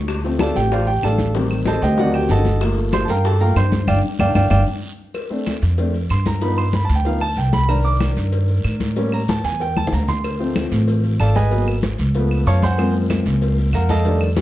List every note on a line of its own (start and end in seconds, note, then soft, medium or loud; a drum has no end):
0.00 0.50 D2 medium
0.08 high bongo medium
0.08 high conga soft
0.08 long guiro medium
0.08 claves medium
0.08 maracas medium
0.24 0.69 F3 medium
0.24 0.70 A3 medium
0.24 0.70 C4 medium
0.24 high bongo soft
0.24 high conga soft
0.24 maracas soft
0.39 0.56 A4 medium
0.39 0.56 D5 medium
0.39 0.56 F5 medium
0.39 0.56 A5 medium
0.39 high bongo medium
0.39 high conga loud
0.39 short guiro medium
0.39 claves medium
0.39 maracas soft
0.56 1.00 A1 medium
0.56 0.72 G4 medium
0.56 0.71 G5 medium
0.56 high bongo soft
0.56 short guiro medium
0.56 maracas medium
0.71 0.87 F4 medium
0.71 0.87 C5 medium
0.71 0.87 D5 medium
0.71 0.87 F5 medium
0.71 high bongo medium
0.71 high conga soft
0.71 long guiro medium
0.71 maracas medium
0.87 1.03 G4 medium
0.87 1.03 G5 medium
0.87 high conga soft
0.87 maracas soft
1.03 1.77 A1 medium
1.03 1.33 A4 medium
1.03 1.33 D5 medium
1.03 1.33 F5 medium
1.03 1.33 A5 medium
1.03 high bongo soft
1.03 low bongo medium
1.03 high conga soft
1.03 short guiro medium
1.03 claves medium
1.03 maracas soft
1.18 high bongo soft
1.18 high conga medium
1.18 short guiro medium
1.18 maracas medium
1.34 1.95 D#3 medium
1.34 1.95 G3 medium
1.34 1.95 C4 medium
1.34 high bongo medium
1.34 high conga soft
1.34 long guiro medium
1.34 maracas medium
1.50 high bongo soft
1.50 high conga soft
1.50 claves medium
1.50 maracas soft
1.66 1.83 A4 medium
1.66 1.82 C5 medium
1.66 1.82 D#5 medium
1.66 1.82 A5 medium
1.66 high bongo medium
1.66 high conga medium
1.66 short guiro medium
1.66 maracas soft
1.81 2.26 D2 loud
1.81 1.98 G4 medium
1.81 1.98 C5 medium
1.81 1.98 D#5 medium
1.81 1.98 G5 medium
1.81 high bongo soft
1.81 high conga soft
1.81 short guiro medium
1.81 maracas medium
1.95 2.43 D#3 medium
1.95 1.97 F5 medium
1.95 high bongo medium
1.95 high conga soft
1.95 long guiro medium
1.95 maracas medium
1.99 2.44 F#3 medium
1.99 2.44 C4 medium
1.99 2.14 F#4 medium
1.99 2.14 D5 medium
1.99 2.14 D#5 medium
1.99 2.14 F#5 medium
2.13 2.30 G4 medium
2.13 2.30 G5 medium
2.13 high conga soft
2.13 claves medium
2.13 maracas soft
2.29 3.03 G1 medium
2.29 2.60 A4 medium
2.29 2.60 D#5 medium
2.29 2.60 F#5 medium
2.29 2.60 A5 medium
2.29 high bongo soft
2.29 low bongo medium
2.29 high conga soft
2.29 short guiro medium
2.29 maracas soft
2.45 high bongo soft
2.45 high conga medium
2.45 short guiro medium
2.45 maracas medium
2.61 3.06 F3 medium
2.61 3.07 A3 medium
2.61 3.07 A#3 medium
2.61 high bongo medium
2.61 high conga soft
2.61 long guiro medium
2.61 claves medium
2.61 maracas medium
2.77 high bongo soft
2.77 high conga soft
2.77 maracas soft
2.92 3.09 C5 medium
2.92 3.09 C6 loud
2.92 high bongo medium
2.92 high conga medium
2.92 short guiro medium
2.92 claves medium
2.92 maracas soft
3.05 3.53 G2 medium
3.05 3.07 A5 medium
3.05 high bongo soft
3.05 short guiro medium
3.09 3.25 A#4 medium
3.09 3.25 F5 medium
3.09 3.25 G5 medium
3.09 3.25 A#5 loud
3.09 maracas medium
3.24 3.41 A4 medium
3.24 3.40 A5 medium
3.24 high bongo medium
3.24 high conga soft
3.24 long guiro medium
3.24 maracas medium
3.40 3.55 F3 medium
3.40 3.55 A3 soft
3.40 3.55 A#3 medium
3.40 3.56 A#4 medium
3.40 3.56 F5 medium
3.40 3.56 G5 medium
3.40 3.56 A#5 loud
3.40 high conga soft
3.40 maracas soft
3.56 3.85 G2 medium
3.56 3.86 C5 medium
3.56 3.86 C6 medium
3.56 high bongo soft
3.56 low bongo medium
3.56 high conga soft
3.56 short guiro medium
3.56 claves medium
3.56 maracas soft
3.72 high bongo soft
3.72 high conga medium
3.72 short guiro medium
3.72 maracas medium
3.87 4.00 G1 loud
3.87 3.98 D5 medium
3.87 3.98 F5 loud
3.87 3.98 G5 medium
3.87 low bongo loud
3.87 high conga loud
3.87 long guiro loud
3.87 claves loud
3.87 maracas medium
4.19 4.31 G1 medium
4.19 4.30 D5 loud
4.19 4.30 F5 loud
4.19 4.30 G5 loud
4.19 low bongo loud
4.19 high conga loud
4.19 long guiro loud
4.19 claves loud
4.19 maracas loud
4.35 4.47 G1 medium
4.35 4.46 D5 medium
4.35 4.46 F5 loud
4.35 4.46 G5 loud
4.35 low bongo loud
4.35 high conga loud
4.35 long guiro loud
4.35 claves loud
4.35 maracas loud
4.50 4.63 G1 loud
4.50 4.61 D5 loud
4.50 4.61 F5 loud
4.50 4.61 G5 loud
4.50 low bongo medium
4.50 high conga loud
4.50 long guiro loud
4.50 claves loud
4.50 maracas loud
5.14 cowbell loud
5.14 high conga soft
5.14 long guiro medium
5.14 claves medium
5.14 maracas medium
5.30 5.52 A3 medium
5.30 5.52 C4 medium
5.30 5.52 D4 medium
5.30 high conga soft
5.30 maracas soft
5.46 cowbell medium
5.46 high conga medium
5.46 short guiro medium
5.46 claves medium
5.46 maracas soft
5.62 6.07 F2 loud
5.62 cowbell medium
5.62 short guiro medium
5.62 maracas medium
5.78 5.93 A3 soft
5.78 5.93 C4 soft
5.78 5.93 D4 medium
5.78 cowbell loud
5.78 high conga soft
5.78 long guiro medium
5.78 maracas medium
5.94 cowbell medium
5.94 high conga soft
5.94 maracas soft
6.09 6.84 G2 medium
6.09 6.26 C6 medium
6.09 cowbell medium
6.09 high conga soft
6.09 short guiro medium
6.09 claves medium
6.09 maracas soft
6.26 6.42 A#5 medium
6.26 cowbell medium
6.26 high conga medium
6.26 short guiro medium
6.26 maracas medium
6.41 6.63 F3 medium
6.41 6.63 B3 medium
6.41 6.63 D#4 medium
6.41 6.58 B5 medium
6.41 cowbell loud
6.41 high conga soft
6.41 long guiro medium
6.41 maracas medium
6.57 6.73 C6 medium
6.57 high conga soft
6.57 claves medium
6.57 maracas soft
6.73 6.84 B5 medium
6.73 cowbell medium
6.73 high conga medium
6.73 short guiro medium
6.73 maracas soft
6.85 6.95 A5 medium
6.89 7.34 D2 loud
6.89 high conga soft
6.89 short guiro medium
6.89 maracas medium
6.95 7.06 G5 medium
7.05 7.20 F3 medium
7.05 7.20 B3 soft
7.05 7.20 D#4 medium
7.05 7.22 F5 medium
7.05 cowbell medium
7.05 high conga soft
7.05 long guiro medium
7.05 maracas medium
7.21 7.37 A5 loud
7.21 high conga soft
7.21 claves medium
7.21 maracas soft
7.37 8.11 C2 medium
7.37 7.53 G5 medium
7.37 cowbell medium
7.37 high conga soft
7.37 short guiro medium
7.37 maracas soft
7.53 7.69 B5 loud
7.53 high conga medium
7.53 short guiro medium
7.53 maracas medium
7.68 8.92 D#3 medium
7.68 8.93 D4 medium
7.68 8.92 A#4 medium
7.68 7.85 A#5 loud
7.68 cowbell loud
7.68 high conga soft
7.68 long guiro medium
7.68 claves medium
7.68 maracas medium
7.85 7.94 D6 loud
7.85 high conga soft
7.85 maracas soft
8.00 cowbell medium
8.00 high conga medium
8.00 short guiro medium
8.00 claves medium
8.00 maracas soft
8.16 8.61 G2 medium
8.16 cowbell medium
8.16 short guiro medium
8.16 maracas medium
8.32 cowbell loud
8.32 high conga soft
8.32 long guiro medium
8.32 maracas medium
8.48 cowbell medium
8.48 high conga soft
8.48 maracas soft
8.64 9.39 A2 medium
8.64 cowbell medium
8.64 high conga soft
8.64 short guiro medium
8.64 claves medium
8.64 maracas soft
8.80 cowbell medium
8.80 high conga medium
8.80 short guiro medium
8.80 maracas medium
8.96 9.18 G3 medium
8.96 9.18 A#3 medium
8.96 9.18 C#4 medium
8.96 cowbell loud
8.96 high conga soft
8.96 long guiro medium
8.96 maracas medium
9.12 9.29 A#5 medium
9.12 high conga soft
9.12 claves medium
9.12 maracas soft
9.28 9.44 A5 medium
9.28 cowbell medium
9.28 high conga loud
9.28 short guiro medium
9.28 maracas soft
9.44 9.89 E2 medium
9.44 9.60 G#5 loud
9.44 high conga soft
9.44 short guiro medium
9.44 maracas medium
9.60 9.76 G5 medium
9.60 cowbell loud
9.60 high conga soft
9.60 long guiro medium
9.60 maracas medium
9.77 9.92 A5 medium
9.77 high conga medium
9.77 claves medium
9.77 maracas soft
9.87 low conga medium
9.92 10.66 D2 medium
9.92 10.08 A#5 medium
9.92 cowbell medium
9.92 short guiro medium
9.92 maracas soft
10.08 10.53 C6 loud
10.08 low conga medium
10.08 short guiro medium
10.08 maracas medium
10.24 cowbell loud
10.24 high conga soft
10.24 long guiro medium
10.24 claves medium
10.24 maracas medium
10.39 11.47 F3 medium
10.39 11.47 A3 medium
10.39 11.48 C4 medium
10.39 high conga soft
10.39 maracas soft
10.56 cowbell medium
10.56 high conga loud
10.56 short guiro medium
10.56 claves medium
10.56 maracas soft
10.72 11.16 A1 loud
10.72 cowbell medium
10.72 short guiro medium
10.72 maracas medium
10.88 cowbell loud
10.88 high conga soft
10.88 long guiro medium
10.88 maracas medium
11.04 cowbell medium
11.04 high conga soft
11.04 maracas soft
11.20 11.93 G#1 medium
11.20 11.36 A4 medium
11.20 11.35 D5 medium
11.20 11.36 F5 medium
11.20 11.35 A5 medium
11.20 cowbell medium
11.20 high conga soft
11.20 short guiro medium
11.20 claves medium
11.20 maracas soft
11.35 11.65 G#4 medium
11.35 11.65 B4 medium
11.35 11.65 D#5 medium
11.35 11.65 G#5 loud
11.35 cowbell medium
11.35 high conga medium
11.35 short guiro medium
11.35 maracas medium
11.51 11.72 F#3 medium
11.51 11.73 A#3 medium
11.51 11.73 B3 medium
11.51 cowbell loud
11.51 high conga soft
11.51 long guiro medium
11.51 maracas medium
11.67 high conga soft
11.67 claves medium
11.67 maracas soft
11.82 cowbell medium
11.82 high conga medium
11.82 short guiro medium
11.82 maracas soft
11.98 12.43 C#2 medium
11.98 high conga soft
11.98 short guiro medium
11.98 maracas medium
12.14 12.60 F3 medium
12.14 12.60 A3 medium
12.14 12.61 B3 medium
12.14 cowbell loud
12.14 high conga soft
12.14 long guiro medium
12.14 maracas medium
12.31 high conga soft
12.31 claves medium
12.31 maracas soft
12.46 13.20 F#2 medium
12.46 12.62 C#5 medium
12.46 12.63 F5 medium
12.46 12.62 A5 medium
12.46 12.62 C#6 loud
12.46 cowbell medium
12.46 high conga soft
12.46 short guiro medium
12.46 maracas soft
12.62 12.93 C5 medium
12.62 12.93 F#5 medium
12.62 12.93 G#5 medium
12.62 12.92 C6 loud
12.62 high conga medium
12.62 short guiro medium
12.62 maracas medium
12.78 14.01 F3 medium
12.78 14.01 G#3 medium
12.78 14.01 A#3 medium
12.78 14.01 C4 medium
12.78 cowbell loud
12.78 high conga soft
12.78 long guiro medium
12.78 claves medium
12.78 maracas medium
12.94 high conga soft
12.94 maracas soft
13.10 cowbell medium
13.10 high conga medium
13.10 short guiro medium
13.10 claves medium
13.10 maracas soft
13.26 13.70 C#2 loud
13.26 cowbell medium
13.26 short guiro medium
13.26 maracas medium
13.42 cowbell loud
13.42 high conga soft
13.42 long guiro medium
13.42 maracas medium
13.57 cowbell medium
13.57 high conga soft
13.57 maracas soft
13.73 14.41 F2 medium
13.73 13.89 A#4 medium
13.73 13.89 F5 medium
13.73 13.89 F#5 medium
13.73 13.89 A#5 medium
13.73 cowbell medium
13.73 high conga soft
13.73 short guiro medium
13.73 claves medium
13.73 maracas soft
13.89 14.19 A4 medium
13.89 14.19 D#5 medium
13.89 14.19 F5 medium
13.89 14.19 A5 loud
13.89 cowbell medium
13.89 high conga medium
13.89 short guiro medium
13.89 maracas medium
14.05 14.26 D#3 medium
14.05 14.26 G3 medium
14.05 14.26 A3 medium
14.05 14.26 D4 medium
14.05 cowbell loud
14.05 high conga soft
14.05 maracas loud
14.20 high conga soft
14.20 claves medium
14.20 maracas soft
14.37 cowbell medium
14.37 high bongo loud
14.37 high conga loud
14.37 short guiro medium
14.37 maracas soft